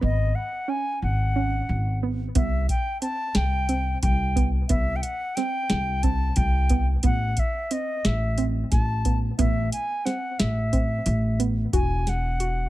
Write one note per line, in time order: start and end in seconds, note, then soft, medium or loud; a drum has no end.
0.01 0.31 G#1 medium
0.01 0.44 B3 medium
0.01 0.37 D#5 medium
0.35 0.71 F#5 medium
0.68 1.11 C#4 medium
0.68 1.02 G#5 medium
1.02 1.59 G#1 medium
1.02 1.99 F#5 medium
1.36 1.79 C#4 medium
1.69 2.26 G#1 medium
2.03 2.24 B3 medium
2.35 2.64 C2 medium
2.35 2.78 B3 medium
2.35 2.67 E5 medium
2.35 kick loud
2.35 closed hi-hat medium
2.69 3.01 G5 medium
2.69 kick medium
2.69 closed hi-hat medium
3.02 3.45 C4 medium
3.02 3.38 A5 medium
3.02 closed hi-hat medium
3.35 3.93 C2 medium
3.35 4.01 G5 medium
3.35 snare loud
3.35 closed hi-hat medium
3.69 4.12 C4 medium
3.69 closed hi-hat medium
4.02 4.60 C2 medium
4.02 4.49 G5 medium
4.02 kick loud
4.02 closed hi-hat medium
4.36 4.58 B3 medium
4.36 kick medium
4.36 closed hi-hat medium
4.69 4.99 C2 medium
4.69 5.13 B3 medium
4.69 4.98 E5 medium
4.69 kick loud
4.69 closed hi-hat medium
4.96 5.03 G5 medium
5.02 5.37 F#5 medium
5.02 closed hi-hat medium
5.35 5.80 C4 medium
5.35 6.05 G5 medium
5.35 snare soft
5.35 closed hi-hat medium
5.70 6.28 C2 medium
5.70 snare loud
5.70 closed hi-hat medium
6.03 6.47 C4 medium
6.03 6.38 A5 medium
6.03 kick medium
6.03 closed hi-hat medium
6.36 6.94 C2 medium
6.36 6.87 G5 medium
6.36 kick medium
6.36 closed hi-hat medium
6.69 6.92 B3 medium
6.69 kick medium
6.69 closed hi-hat medium
7.03 7.33 A1 medium
7.03 7.47 B3 medium
7.03 7.41 F#5 loud
7.03 kick loud
7.03 closed hi-hat medium
7.37 7.74 E5 medium
7.37 kick medium
7.37 closed hi-hat medium
7.71 8.14 C4 medium
7.71 8.08 D#5 medium
7.71 closed hi-hat medium
8.05 8.62 A1 medium
8.05 8.45 E5 medium
8.05 snare loud
8.05 closed hi-hat medium
8.38 8.81 C4 medium
8.38 closed hi-hat medium
8.71 9.29 A1 medium
8.71 9.18 A5 medium
8.71 kick loud
8.71 snare soft
8.71 closed hi-hat medium
9.05 9.27 B3 medium
9.05 kick medium
9.05 closed hi-hat medium
9.38 9.67 A1 loud
9.38 9.82 B3 medium
9.38 9.70 E5 medium
9.38 kick loud
9.38 closed hi-hat medium
9.72 10.07 G#5 medium
9.72 closed hi-hat medium
10.05 10.48 C4 medium
10.05 10.41 F#5 medium
10.05 snare soft
10.05 closed hi-hat medium
10.39 10.97 A1 medium
10.39 11.40 E5 medium
10.39 snare loud
10.39 closed hi-hat medium
10.73 11.16 C4 medium
10.73 kick medium
10.73 closed hi-hat medium
11.06 11.64 A1 medium
11.06 closed hi-hat medium
11.39 11.61 B3 medium
11.39 closed hi-hat medium
11.73 12.69 E1 medium
11.73 12.16 F#4 medium
11.73 12.10 G#5 medium
11.73 kick loud
11.73 closed hi-hat medium
12.07 12.69 F#5 medium
12.07 snare soft
12.07 closed hi-hat medium
12.40 12.69 F#4 medium
12.40 closed hi-hat soft